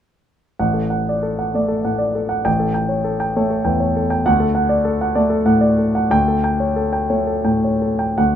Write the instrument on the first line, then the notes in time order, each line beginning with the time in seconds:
grand piano
0.59 A1 F#5
0.74 A4
0.90 F#5
1.09 D5
1.23 A4
1.39 F#5
1.54 A3 D5
1.68 A4
1.85 A2 F#5
1.98 D5
2.15 A4
2.29 F#5
2.45 A1 G5
2.59 A4
2.74 G5
2.89 C#5
3.04 A4
3.20 G5
3.36 A3 C#5
3.50 A4
3.65 E2 G5
3.80 C#5
3.96 A4
4.10 G5
4.26 D2 F#5
4.40 A4
4.55 F#5
4.69 D5
4.85 A4
5.01 F#5
5.15 A3 D5
5.30 A4
5.45 A2 F#5
5.61 D5
5.78 A4
5.95 F#5
6.10 D2 G5
6.28 A4
6.44 G5
6.60 C#5
6.76 A4
6.93 G5
7.10 A3 C#5
7.27 A4
7.44 A2 G5
7.64 C#5
7.82 A4
7.99 G5
8.18 D2 F#5